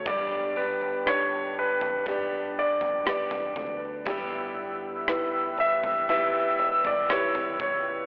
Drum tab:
SD |----r-------r---|----r-------r---|
FT |o------oo--o-oo-|o------oo--o-oo-|
BD |o-------o-------|o-------------o-|